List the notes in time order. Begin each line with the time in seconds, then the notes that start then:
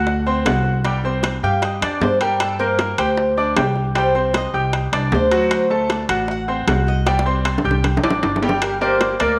Already playing: D2 F#4 F#5 F#6
0.07 high bongo
0.26 C4 C5 C6, high bongo
0.45 C2 F#4 F#5 F#6, high bongo, low bongo, high timbale, low timbale
0.65 high bongo
0.85 G3 G4 G5, high bongo, high timbale
1.04 C4 C5 C6, high bongo
1.23 high bongo, high timbale, low timbale
1.43 G2 G4 F5 G5 G6
1.62 D#5, high bongo, high timbale
1.81 F2 D4 D5 D6, high bongo, high timbale
2.00 G2 C5, high bongo, low bongo, low timbale
2.21 G3 G4 A#4 G5, high bongo, high timbale
2.40 A4, high bongo, high timbale
2.59 A#3 A#4 C5 A#5, high bongo
2.79 A#4, high bongo, high timbale, low timbale
2.98 D2 G4 C5 G5 G6, high timbale
3.17 high bongo
3.37 D4 D5 D6, high bongo
3.56 C2 G4 G5 G6, high bongo, low bongo, high timbale, low timbale
3.76 high bongo
3.95 G3 G4 C5 G5, high bongo, high timbale
4.15 C4 C5 C6, high bongo
4.34 D#5, high bongo, high timbale, low timbale
4.54 C2 G4 G5 G6
4.73 high bongo, high timbale
4.92 C2 D4 D5 D6, high bongo, high timbale
5.12 D2 C5, high bongo, low bongo, low timbale
5.31 F#3 F#4 F#5, high bongo, high timbale
5.51 C5, high bongo, high timbale
5.70 A3 A4 A5, high bongo
5.90 D5, high bongo, high timbale, low timbale
6.09 A1 F#4 F#5 F#6, high timbale
6.28 F#5, high bongo
6.48 C4 C5 C6, high bongo
6.67 C2 F#4 F#5 F#6, high bongo, low bongo, high timbale, low timbale
6.87 D#5, high bongo
7.06 G3 G4 D5 G5, high bongo, high timbale
7.19 high bongo
7.26 C4 C5 C6
7.45 D5, high timbale, low timbale
7.58 low bongo
7.64 C2 G4 G5 G6
7.71 low bongo
7.84 low bongo, high timbale
7.97 low bongo
8.04 A1 D4 D5 D6, high timbale
8.10 low bongo
8.23 G1, low bongo, high timbale
8.36 low bongo
8.42 G3 G4 G5, low timbale
8.49 low bongo
8.62 G4 A#4, high bongo, high timbale
8.81 A#3 G4 A#4 C5 D5, high bongo
9.01 high bongo, high timbale, low timbale
9.19 D2 A#3 A#4 D5, high timbale